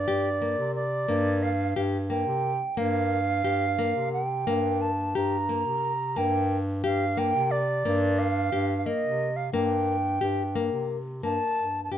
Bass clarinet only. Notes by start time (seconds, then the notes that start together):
0.08 G2
0.58 C3
1.08 G2
1.76 G2
2.26 C3
2.77 G2
3.45 G2
3.95 C3
4.47 G2
5.15 G2
5.66 C3
6.17 G2
6.84 G2
7.35 C3
7.85 G2
8.52 G2
9.02 C3
9.53 G2
10.21 G2
10.72 C3
11.23 G2
11.57 G2
11.90 G2